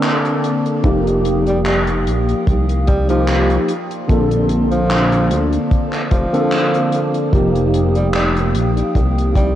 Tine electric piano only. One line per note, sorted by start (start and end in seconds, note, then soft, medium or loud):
0.00 0.22 D3 medium
0.00 0.23 A#3 medium
0.00 0.23 C4 medium
0.00 0.23 A4 loud
0.83 3.03 F3 medium
0.83 3.04 A#3 medium
0.83 3.04 D#4 medium
0.83 3.05 G4 medium
3.08 3.47 F3 medium
3.08 3.47 A#3 medium
3.08 3.47 D#4 medium
3.08 3.47 G4 loud
4.07 6.28 D3 medium
4.07 6.28 A#3 medium
4.07 6.29 C4 medium
4.07 6.29 A4 loud
6.33 6.71 D3 medium
6.33 6.71 A#3 medium
6.33 6.71 C4 medium
6.33 6.72 A4 loud
7.32 9.52 F3 medium
7.32 9.52 A#3 medium
7.32 9.53 D#4 medium
7.32 9.53 G4 medium